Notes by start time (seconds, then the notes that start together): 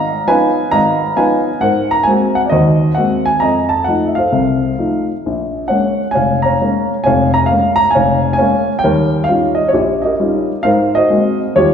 Already playing: G#1 D#5 F5 A#5
0.27 F3 B3 C#4 D#4 B4 F5 G#5
0.71 G#1 D#5 F5 A#5
1.16 F3 B3 C#4 D#4 B4 F5 G#5
1.61 G#2 A#4 C5 F#5
1.91 A#5
2.03 G#3 C4 G#5
2.08 A#3 F#4
2.35 F#5
2.45 D5
2.50 D#2 D#3 F#4 C5 D#5
2.95 G#3 A#3 C4 F#4 F#5
3.26 G#5
3.40 F2 D#5 A#5
3.69 A5
3.84 F3 A3 D#4 F#5
4.07 E5
4.15 A4 C5 F5
4.32 C2 C3
4.78 F3 A3 D#4
5.26 A#1
5.68 G#3 A#3 C#4 C#5 F#5
6.11 C#5 G#5
6.15 F1 F5
6.42 C#5 F5 A#5
6.61 G#3 A#3 C#4
7.04 F1 F2 C#5 F5 G#5
7.34 A#5
7.46 F5
7.51 G#3 A#3 C#4
7.76 A#5
7.91 G#5
7.95 F1 C#5 F5
8.33 G#5
8.38 G#3 A#3 C#4 C#5 F5
8.79 G5
8.84 D#2 G3 A#4 C#5
9.24 F5
9.29 G3 C#4 D#4 F4
9.55 D#5
9.68 C#5
9.73 A#1 F4 G4
10.02 G4 A#4 D#5
10.19 G3 C#4 D#4 F4
10.63 G#2 A#4 C5 F5
10.95 F#4 C5 D#5
11.10 G#3 A#3 C4 F#4
11.55 D#2 G3 F4 G4 C#5